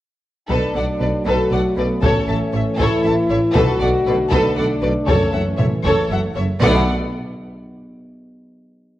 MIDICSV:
0, 0, Header, 1, 11, 480
1, 0, Start_track
1, 0, Key_signature, 2, "minor"
1, 0, Tempo, 510638
1, 464, Time_signature, 6, 3, 24, 8
1, 8458, End_track
2, 0, Start_track
2, 0, Title_t, "Violin section"
2, 0, Program_c, 0, 48
2, 462, Note_on_c, 0, 71, 51
2, 687, Note_off_c, 0, 71, 0
2, 706, Note_on_c, 0, 78, 37
2, 781, Note_off_c, 0, 78, 0
2, 955, Note_on_c, 0, 74, 30
2, 1030, Note_off_c, 0, 74, 0
2, 1198, Note_on_c, 0, 71, 61
2, 1416, Note_off_c, 0, 71, 0
2, 1446, Note_on_c, 0, 78, 42
2, 1521, Note_off_c, 0, 78, 0
2, 1688, Note_on_c, 0, 74, 48
2, 1763, Note_off_c, 0, 74, 0
2, 1928, Note_on_c, 0, 73, 64
2, 2141, Note_off_c, 0, 73, 0
2, 2150, Note_on_c, 0, 81, 44
2, 2225, Note_off_c, 0, 81, 0
2, 2407, Note_on_c, 0, 76, 37
2, 2482, Note_off_c, 0, 76, 0
2, 2639, Note_on_c, 0, 73, 65
2, 2857, Note_off_c, 0, 73, 0
2, 2879, Note_on_c, 0, 81, 52
2, 2954, Note_off_c, 0, 81, 0
2, 3112, Note_on_c, 0, 76, 52
2, 3187, Note_off_c, 0, 76, 0
2, 3351, Note_on_c, 0, 71, 74
2, 3572, Note_off_c, 0, 71, 0
2, 3592, Note_on_c, 0, 78, 45
2, 3667, Note_off_c, 0, 78, 0
2, 3833, Note_on_c, 0, 74, 40
2, 3908, Note_off_c, 0, 74, 0
2, 4055, Note_on_c, 0, 71, 75
2, 4283, Note_off_c, 0, 71, 0
2, 4305, Note_on_c, 0, 78, 52
2, 4380, Note_off_c, 0, 78, 0
2, 4543, Note_on_c, 0, 74, 54
2, 4618, Note_off_c, 0, 74, 0
2, 4778, Note_on_c, 0, 73, 61
2, 5005, Note_off_c, 0, 73, 0
2, 5020, Note_on_c, 0, 78, 39
2, 5095, Note_off_c, 0, 78, 0
2, 5241, Note_on_c, 0, 76, 35
2, 5317, Note_off_c, 0, 76, 0
2, 5501, Note_on_c, 0, 73, 64
2, 5726, Note_off_c, 0, 73, 0
2, 5754, Note_on_c, 0, 78, 40
2, 5830, Note_off_c, 0, 78, 0
2, 5981, Note_on_c, 0, 76, 43
2, 6056, Note_off_c, 0, 76, 0
2, 6226, Note_on_c, 0, 78, 77
2, 6493, Note_off_c, 0, 78, 0
2, 8458, End_track
3, 0, Start_track
3, 0, Title_t, "Violin section"
3, 0, Program_c, 1, 48
3, 467, Note_on_c, 1, 69, 56
3, 689, Note_off_c, 1, 69, 0
3, 715, Note_on_c, 1, 74, 42
3, 790, Note_off_c, 1, 74, 0
3, 946, Note_on_c, 1, 71, 43
3, 1021, Note_off_c, 1, 71, 0
3, 1192, Note_on_c, 1, 69, 57
3, 1413, Note_off_c, 1, 69, 0
3, 1430, Note_on_c, 1, 74, 46
3, 1506, Note_off_c, 1, 74, 0
3, 1666, Note_on_c, 1, 71, 44
3, 1741, Note_off_c, 1, 71, 0
3, 1904, Note_on_c, 1, 69, 60
3, 2128, Note_off_c, 1, 69, 0
3, 2141, Note_on_c, 1, 76, 51
3, 2217, Note_off_c, 1, 76, 0
3, 2382, Note_on_c, 1, 73, 44
3, 2457, Note_off_c, 1, 73, 0
3, 2612, Note_on_c, 1, 69, 66
3, 2842, Note_off_c, 1, 69, 0
3, 2854, Note_on_c, 1, 76, 52
3, 2929, Note_off_c, 1, 76, 0
3, 3102, Note_on_c, 1, 73, 54
3, 3178, Note_off_c, 1, 73, 0
3, 3330, Note_on_c, 1, 69, 74
3, 3561, Note_off_c, 1, 69, 0
3, 3575, Note_on_c, 1, 74, 52
3, 3650, Note_off_c, 1, 74, 0
3, 3825, Note_on_c, 1, 71, 60
3, 3900, Note_off_c, 1, 71, 0
3, 4045, Note_on_c, 1, 69, 77
3, 4278, Note_off_c, 1, 69, 0
3, 4296, Note_on_c, 1, 74, 52
3, 4371, Note_off_c, 1, 74, 0
3, 4531, Note_on_c, 1, 71, 50
3, 4606, Note_off_c, 1, 71, 0
3, 4765, Note_on_c, 1, 69, 62
3, 4998, Note_off_c, 1, 69, 0
3, 5013, Note_on_c, 1, 76, 42
3, 5089, Note_off_c, 1, 76, 0
3, 5245, Note_on_c, 1, 73, 48
3, 5321, Note_off_c, 1, 73, 0
3, 5499, Note_on_c, 1, 69, 61
3, 5725, Note_off_c, 1, 69, 0
3, 5740, Note_on_c, 1, 76, 46
3, 5816, Note_off_c, 1, 76, 0
3, 5972, Note_on_c, 1, 73, 50
3, 6047, Note_off_c, 1, 73, 0
3, 6210, Note_on_c, 1, 74, 72
3, 6484, Note_off_c, 1, 74, 0
3, 8458, End_track
4, 0, Start_track
4, 0, Title_t, "Viola section"
4, 0, Program_c, 2, 48
4, 454, Note_on_c, 2, 69, 46
4, 683, Note_off_c, 2, 69, 0
4, 696, Note_on_c, 2, 69, 38
4, 771, Note_off_c, 2, 69, 0
4, 945, Note_on_c, 2, 69, 37
4, 1020, Note_off_c, 2, 69, 0
4, 1200, Note_on_c, 2, 69, 53
4, 1417, Note_off_c, 2, 69, 0
4, 1437, Note_on_c, 2, 69, 45
4, 1512, Note_off_c, 2, 69, 0
4, 1670, Note_on_c, 2, 69, 46
4, 1745, Note_off_c, 2, 69, 0
4, 1901, Note_on_c, 2, 69, 59
4, 2127, Note_off_c, 2, 69, 0
4, 2151, Note_on_c, 2, 69, 43
4, 2226, Note_off_c, 2, 69, 0
4, 2392, Note_on_c, 2, 69, 44
4, 2468, Note_off_c, 2, 69, 0
4, 2635, Note_on_c, 2, 69, 64
4, 2854, Note_off_c, 2, 69, 0
4, 2871, Note_on_c, 2, 69, 46
4, 2946, Note_off_c, 2, 69, 0
4, 3103, Note_on_c, 2, 69, 50
4, 3179, Note_off_c, 2, 69, 0
4, 3353, Note_on_c, 2, 69, 66
4, 3570, Note_off_c, 2, 69, 0
4, 3581, Note_on_c, 2, 69, 56
4, 3656, Note_off_c, 2, 69, 0
4, 3820, Note_on_c, 2, 69, 50
4, 3895, Note_off_c, 2, 69, 0
4, 4060, Note_on_c, 2, 69, 76
4, 4286, Note_off_c, 2, 69, 0
4, 4307, Note_on_c, 2, 69, 47
4, 4383, Note_off_c, 2, 69, 0
4, 4543, Note_on_c, 2, 69, 45
4, 4619, Note_off_c, 2, 69, 0
4, 4774, Note_on_c, 2, 69, 59
4, 4998, Note_off_c, 2, 69, 0
4, 5010, Note_on_c, 2, 69, 49
4, 5085, Note_off_c, 2, 69, 0
4, 5251, Note_on_c, 2, 69, 46
4, 5326, Note_off_c, 2, 69, 0
4, 5499, Note_on_c, 2, 69, 64
4, 5720, Note_off_c, 2, 69, 0
4, 5732, Note_on_c, 2, 69, 45
4, 5807, Note_off_c, 2, 69, 0
4, 5972, Note_on_c, 2, 69, 50
4, 6047, Note_off_c, 2, 69, 0
4, 6218, Note_on_c, 2, 69, 70
4, 6489, Note_off_c, 2, 69, 0
4, 8458, End_track
5, 0, Start_track
5, 0, Title_t, "French horn section"
5, 0, Program_c, 3, 60
5, 457, Note_on_c, 3, 62, 70
5, 1144, Note_off_c, 3, 62, 0
5, 1180, Note_on_c, 3, 66, 74
5, 1663, Note_off_c, 3, 66, 0
5, 1667, Note_on_c, 3, 59, 65
5, 1898, Note_on_c, 3, 61, 77
5, 1902, Note_off_c, 3, 59, 0
5, 2623, Note_off_c, 3, 61, 0
5, 2629, Note_on_c, 3, 64, 84
5, 3333, Note_off_c, 3, 64, 0
5, 3341, Note_on_c, 3, 66, 93
5, 4050, Note_on_c, 3, 62, 82
5, 4064, Note_off_c, 3, 66, 0
5, 4763, Note_off_c, 3, 62, 0
5, 4775, Note_on_c, 3, 61, 73
5, 5500, Note_off_c, 3, 61, 0
5, 6215, Note_on_c, 3, 59, 99
5, 6419, Note_off_c, 3, 59, 0
5, 8458, End_track
6, 0, Start_track
6, 0, Title_t, "Trombone section"
6, 0, Program_c, 4, 61
6, 472, Note_on_c, 4, 54, 52
6, 473, Note_on_c, 4, 57, 47
6, 1872, Note_off_c, 4, 54, 0
6, 1916, Note_on_c, 4, 52, 64
6, 3313, Note_off_c, 4, 57, 0
6, 3314, Note_off_c, 4, 52, 0
6, 3333, Note_on_c, 4, 50, 72
6, 3338, Note_on_c, 4, 57, 75
6, 4742, Note_off_c, 4, 50, 0
6, 4769, Note_on_c, 4, 52, 62
6, 5939, Note_off_c, 4, 52, 0
6, 5943, Note_off_c, 4, 57, 0
6, 6216, Note_on_c, 4, 57, 76
6, 6218, Note_on_c, 4, 50, 73
6, 6420, Note_off_c, 4, 57, 0
6, 6421, Note_off_c, 4, 50, 0
6, 8458, End_track
7, 0, Start_track
7, 0, Title_t, "Cello section"
7, 0, Program_c, 5, 48
7, 463, Note_on_c, 5, 47, 53
7, 539, Note_off_c, 5, 47, 0
7, 700, Note_on_c, 5, 47, 35
7, 775, Note_off_c, 5, 47, 0
7, 940, Note_on_c, 5, 47, 40
7, 1015, Note_off_c, 5, 47, 0
7, 1179, Note_on_c, 5, 47, 60
7, 1255, Note_off_c, 5, 47, 0
7, 1418, Note_on_c, 5, 47, 40
7, 1493, Note_off_c, 5, 47, 0
7, 1657, Note_on_c, 5, 47, 43
7, 1732, Note_off_c, 5, 47, 0
7, 1901, Note_on_c, 5, 45, 58
7, 1976, Note_off_c, 5, 45, 0
7, 2137, Note_on_c, 5, 45, 48
7, 2212, Note_off_c, 5, 45, 0
7, 2377, Note_on_c, 5, 45, 45
7, 2452, Note_off_c, 5, 45, 0
7, 2612, Note_on_c, 5, 45, 78
7, 2687, Note_off_c, 5, 45, 0
7, 2861, Note_on_c, 5, 45, 50
7, 2937, Note_off_c, 5, 45, 0
7, 3102, Note_on_c, 5, 45, 48
7, 3177, Note_off_c, 5, 45, 0
7, 3339, Note_on_c, 5, 47, 74
7, 3414, Note_off_c, 5, 47, 0
7, 3578, Note_on_c, 5, 47, 50
7, 3653, Note_off_c, 5, 47, 0
7, 3822, Note_on_c, 5, 47, 59
7, 3897, Note_off_c, 5, 47, 0
7, 4063, Note_on_c, 5, 47, 73
7, 4138, Note_off_c, 5, 47, 0
7, 4307, Note_on_c, 5, 47, 45
7, 4382, Note_off_c, 5, 47, 0
7, 4537, Note_on_c, 5, 47, 48
7, 4613, Note_off_c, 5, 47, 0
7, 4774, Note_on_c, 5, 42, 64
7, 4849, Note_off_c, 5, 42, 0
7, 5016, Note_on_c, 5, 42, 41
7, 5092, Note_off_c, 5, 42, 0
7, 5254, Note_on_c, 5, 42, 46
7, 5329, Note_off_c, 5, 42, 0
7, 5496, Note_on_c, 5, 42, 64
7, 5571, Note_off_c, 5, 42, 0
7, 5735, Note_on_c, 5, 42, 47
7, 5810, Note_off_c, 5, 42, 0
7, 5973, Note_on_c, 5, 42, 41
7, 6049, Note_off_c, 5, 42, 0
7, 6215, Note_on_c, 5, 47, 74
7, 6487, Note_off_c, 5, 47, 0
7, 8458, End_track
8, 0, Start_track
8, 0, Title_t, "Timpani"
8, 0, Program_c, 6, 47
8, 4784, Note_on_c, 6, 42, 69
8, 5467, Note_off_c, 6, 42, 0
8, 6224, Note_on_c, 6, 47, 88
8, 6447, Note_off_c, 6, 47, 0
8, 8458, End_track
9, 0, Start_track
9, 0, Title_t, "Double bass section"
9, 0, Program_c, 7, 48
9, 465, Note_on_c, 7, 35, 46
9, 540, Note_off_c, 7, 35, 0
9, 704, Note_on_c, 7, 35, 39
9, 779, Note_off_c, 7, 35, 0
9, 947, Note_on_c, 7, 35, 41
9, 1022, Note_off_c, 7, 35, 0
9, 1187, Note_on_c, 7, 35, 52
9, 1262, Note_off_c, 7, 35, 0
9, 1431, Note_on_c, 7, 35, 42
9, 1506, Note_off_c, 7, 35, 0
9, 1667, Note_on_c, 7, 35, 42
9, 1742, Note_off_c, 7, 35, 0
9, 1904, Note_on_c, 7, 33, 59
9, 1979, Note_off_c, 7, 33, 0
9, 2148, Note_on_c, 7, 33, 51
9, 2223, Note_off_c, 7, 33, 0
9, 2386, Note_on_c, 7, 33, 51
9, 2461, Note_off_c, 7, 33, 0
9, 2623, Note_on_c, 7, 33, 66
9, 2698, Note_off_c, 7, 33, 0
9, 2861, Note_on_c, 7, 33, 49
9, 2936, Note_off_c, 7, 33, 0
9, 3104, Note_on_c, 7, 33, 52
9, 3179, Note_off_c, 7, 33, 0
9, 3340, Note_on_c, 7, 35, 70
9, 3415, Note_off_c, 7, 35, 0
9, 3578, Note_on_c, 7, 35, 54
9, 3653, Note_off_c, 7, 35, 0
9, 3813, Note_on_c, 7, 35, 57
9, 3888, Note_off_c, 7, 35, 0
9, 4056, Note_on_c, 7, 35, 64
9, 4131, Note_off_c, 7, 35, 0
9, 4294, Note_on_c, 7, 35, 47
9, 4369, Note_off_c, 7, 35, 0
9, 4529, Note_on_c, 7, 35, 48
9, 4604, Note_off_c, 7, 35, 0
9, 4772, Note_on_c, 7, 30, 60
9, 4847, Note_off_c, 7, 30, 0
9, 5009, Note_on_c, 7, 30, 49
9, 5084, Note_off_c, 7, 30, 0
9, 5250, Note_on_c, 7, 30, 48
9, 5325, Note_off_c, 7, 30, 0
9, 5487, Note_on_c, 7, 30, 56
9, 5562, Note_off_c, 7, 30, 0
9, 5728, Note_on_c, 7, 30, 51
9, 5803, Note_off_c, 7, 30, 0
9, 5973, Note_on_c, 7, 30, 46
9, 6048, Note_off_c, 7, 30, 0
9, 6216, Note_on_c, 7, 35, 84
9, 6488, Note_off_c, 7, 35, 0
9, 8458, End_track
10, 0, Start_track
10, 0, Title_t, "Tuba"
10, 0, Program_c, 8, 58
10, 460, Note_on_c, 8, 35, 49
10, 557, Note_off_c, 8, 35, 0
10, 703, Note_on_c, 8, 35, 41
10, 800, Note_off_c, 8, 35, 0
10, 945, Note_on_c, 8, 35, 40
10, 1042, Note_off_c, 8, 35, 0
10, 1190, Note_on_c, 8, 35, 57
10, 1285, Note_off_c, 8, 35, 0
10, 1423, Note_on_c, 8, 35, 42
10, 1519, Note_off_c, 8, 35, 0
10, 1666, Note_on_c, 8, 35, 46
10, 1762, Note_off_c, 8, 35, 0
10, 1906, Note_on_c, 8, 33, 63
10, 2002, Note_off_c, 8, 33, 0
10, 2139, Note_on_c, 8, 33, 48
10, 2237, Note_off_c, 8, 33, 0
10, 2379, Note_on_c, 8, 33, 46
10, 2477, Note_off_c, 8, 33, 0
10, 2622, Note_on_c, 8, 33, 66
10, 2719, Note_off_c, 8, 33, 0
10, 2857, Note_on_c, 8, 33, 54
10, 2955, Note_off_c, 8, 33, 0
10, 3105, Note_on_c, 8, 33, 56
10, 3202, Note_off_c, 8, 33, 0
10, 3347, Note_on_c, 8, 35, 71
10, 3443, Note_off_c, 8, 35, 0
10, 3582, Note_on_c, 8, 35, 52
10, 3679, Note_off_c, 8, 35, 0
10, 3829, Note_on_c, 8, 35, 53
10, 3925, Note_off_c, 8, 35, 0
10, 4065, Note_on_c, 8, 35, 74
10, 4161, Note_off_c, 8, 35, 0
10, 4297, Note_on_c, 8, 35, 53
10, 4395, Note_off_c, 8, 35, 0
10, 4539, Note_on_c, 8, 35, 52
10, 4636, Note_off_c, 8, 35, 0
10, 4773, Note_on_c, 8, 30, 62
10, 4871, Note_off_c, 8, 30, 0
10, 5020, Note_on_c, 8, 30, 47
10, 5117, Note_off_c, 8, 30, 0
10, 5254, Note_on_c, 8, 30, 48
10, 5352, Note_off_c, 8, 30, 0
10, 5495, Note_on_c, 8, 30, 68
10, 5593, Note_off_c, 8, 30, 0
10, 5739, Note_on_c, 8, 30, 45
10, 5836, Note_off_c, 8, 30, 0
10, 5985, Note_on_c, 8, 30, 52
10, 6081, Note_off_c, 8, 30, 0
10, 6223, Note_on_c, 8, 35, 83
10, 6424, Note_off_c, 8, 35, 0
10, 8458, End_track
11, 0, Start_track
11, 0, Title_t, "Taiko and cinematic ensemble drums"
11, 465, Note_on_c, 9, 41, 56
11, 559, Note_off_c, 9, 41, 0
11, 1907, Note_on_c, 9, 41, 83
11, 2001, Note_off_c, 9, 41, 0
11, 2626, Note_on_c, 9, 41, 69
11, 2720, Note_off_c, 9, 41, 0
11, 3343, Note_on_c, 9, 41, 89
11, 3437, Note_off_c, 9, 41, 0
11, 4058, Note_on_c, 9, 41, 77
11, 4152, Note_off_c, 9, 41, 0
11, 4776, Note_on_c, 9, 41, 92
11, 4870, Note_off_c, 9, 41, 0
11, 5256, Note_on_c, 9, 45, 59
11, 5350, Note_off_c, 9, 45, 0
11, 5499, Note_on_c, 9, 41, 65
11, 5593, Note_off_c, 9, 41, 0
11, 8458, End_track
0, 0, End_of_file